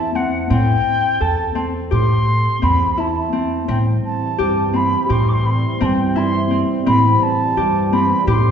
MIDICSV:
0, 0, Header, 1, 5, 480
1, 0, Start_track
1, 0, Tempo, 706714
1, 344, Time_signature, 9, 3, 24, 8
1, 5781, End_track
2, 0, Start_track
2, 0, Title_t, "Flute"
2, 0, Program_c, 0, 73
2, 0, Note_on_c, 0, 81, 108
2, 103, Note_on_c, 0, 78, 85
2, 113, Note_off_c, 0, 81, 0
2, 342, Note_off_c, 0, 78, 0
2, 346, Note_on_c, 0, 79, 106
2, 825, Note_on_c, 0, 81, 89
2, 835, Note_off_c, 0, 79, 0
2, 1121, Note_off_c, 0, 81, 0
2, 1308, Note_on_c, 0, 84, 103
2, 1788, Note_on_c, 0, 83, 88
2, 1798, Note_off_c, 0, 84, 0
2, 2035, Note_on_c, 0, 81, 89
2, 2045, Note_off_c, 0, 83, 0
2, 2510, Note_off_c, 0, 81, 0
2, 2514, Note_on_c, 0, 79, 79
2, 2567, Note_off_c, 0, 79, 0
2, 2750, Note_on_c, 0, 81, 104
2, 3231, Note_on_c, 0, 83, 88
2, 3241, Note_off_c, 0, 81, 0
2, 3474, Note_on_c, 0, 84, 92
2, 3484, Note_off_c, 0, 83, 0
2, 3590, Note_on_c, 0, 86, 85
2, 3596, Note_off_c, 0, 84, 0
2, 3621, Note_on_c, 0, 84, 92
2, 3628, Note_off_c, 0, 86, 0
2, 3705, Note_on_c, 0, 83, 85
2, 3712, Note_off_c, 0, 84, 0
2, 3736, Note_on_c, 0, 84, 92
2, 3743, Note_off_c, 0, 83, 0
2, 3949, Note_on_c, 0, 81, 78
2, 3959, Note_off_c, 0, 84, 0
2, 3975, Note_on_c, 0, 79, 85
2, 3981, Note_off_c, 0, 81, 0
2, 4194, Note_on_c, 0, 84, 102
2, 4204, Note_off_c, 0, 79, 0
2, 4485, Note_off_c, 0, 84, 0
2, 4666, Note_on_c, 0, 83, 107
2, 4908, Note_on_c, 0, 81, 103
2, 4918, Note_off_c, 0, 83, 0
2, 5385, Note_on_c, 0, 83, 89
2, 5395, Note_off_c, 0, 81, 0
2, 5624, Note_off_c, 0, 83, 0
2, 5628, Note_on_c, 0, 84, 100
2, 5781, Note_off_c, 0, 84, 0
2, 5781, End_track
3, 0, Start_track
3, 0, Title_t, "Harp"
3, 0, Program_c, 1, 46
3, 0, Note_on_c, 1, 60, 92
3, 0, Note_on_c, 1, 64, 79
3, 0, Note_on_c, 1, 67, 80
3, 0, Note_on_c, 1, 69, 83
3, 100, Note_off_c, 1, 60, 0
3, 102, Note_on_c, 1, 60, 80
3, 150, Note_off_c, 1, 69, 0
3, 337, Note_off_c, 1, 60, 0
3, 340, Note_on_c, 1, 60, 88
3, 739, Note_off_c, 1, 67, 0
3, 819, Note_on_c, 1, 69, 81
3, 1051, Note_off_c, 1, 60, 0
3, 1054, Note_on_c, 1, 60, 86
3, 1296, Note_on_c, 1, 67, 76
3, 1636, Note_off_c, 1, 64, 0
3, 1777, Note_off_c, 1, 60, 0
3, 1780, Note_on_c, 1, 60, 84
3, 2020, Note_on_c, 1, 64, 81
3, 2256, Note_off_c, 1, 60, 0
3, 2259, Note_on_c, 1, 60, 70
3, 2310, Note_off_c, 1, 69, 0
3, 2497, Note_off_c, 1, 60, 0
3, 2500, Note_on_c, 1, 60, 81
3, 2895, Note_off_c, 1, 67, 0
3, 2978, Note_on_c, 1, 67, 88
3, 3213, Note_off_c, 1, 60, 0
3, 3215, Note_on_c, 1, 60, 79
3, 3456, Note_off_c, 1, 67, 0
3, 3459, Note_on_c, 1, 67, 77
3, 3794, Note_off_c, 1, 64, 0
3, 3940, Note_off_c, 1, 60, 0
3, 3943, Note_on_c, 1, 60, 98
3, 4181, Note_on_c, 1, 64, 88
3, 4416, Note_off_c, 1, 60, 0
3, 4419, Note_on_c, 1, 60, 76
3, 4658, Note_off_c, 1, 60, 0
3, 4661, Note_on_c, 1, 60, 86
3, 5058, Note_off_c, 1, 67, 0
3, 5142, Note_on_c, 1, 67, 87
3, 5381, Note_off_c, 1, 60, 0
3, 5384, Note_on_c, 1, 60, 87
3, 5617, Note_off_c, 1, 67, 0
3, 5620, Note_on_c, 1, 67, 78
3, 5781, Note_off_c, 1, 60, 0
3, 5781, Note_off_c, 1, 64, 0
3, 5781, Note_off_c, 1, 67, 0
3, 5781, End_track
4, 0, Start_track
4, 0, Title_t, "Analog synth pad"
4, 0, Program_c, 2, 89
4, 2509, Note_on_c, 2, 52, 77
4, 2510, Note_on_c, 2, 55, 72
4, 2510, Note_on_c, 2, 60, 78
4, 5781, Note_off_c, 2, 52, 0
4, 5781, Note_off_c, 2, 55, 0
4, 5781, Note_off_c, 2, 60, 0
4, 5781, End_track
5, 0, Start_track
5, 0, Title_t, "Upright bass"
5, 0, Program_c, 3, 32
5, 0, Note_on_c, 3, 40, 105
5, 166, Note_off_c, 3, 40, 0
5, 342, Note_on_c, 3, 45, 98
5, 525, Note_off_c, 3, 45, 0
5, 822, Note_on_c, 3, 40, 79
5, 1186, Note_off_c, 3, 40, 0
5, 1304, Note_on_c, 3, 45, 103
5, 1668, Note_off_c, 3, 45, 0
5, 1785, Note_on_c, 3, 40, 91
5, 2329, Note_off_c, 3, 40, 0
5, 2503, Note_on_c, 3, 45, 105
5, 2685, Note_off_c, 3, 45, 0
5, 2984, Note_on_c, 3, 43, 92
5, 3347, Note_off_c, 3, 43, 0
5, 3463, Note_on_c, 3, 45, 100
5, 3826, Note_off_c, 3, 45, 0
5, 3948, Note_on_c, 3, 43, 97
5, 4491, Note_off_c, 3, 43, 0
5, 4664, Note_on_c, 3, 45, 102
5, 4845, Note_off_c, 3, 45, 0
5, 5144, Note_on_c, 3, 43, 87
5, 5506, Note_off_c, 3, 43, 0
5, 5619, Note_on_c, 3, 45, 106
5, 5781, Note_off_c, 3, 45, 0
5, 5781, End_track
0, 0, End_of_file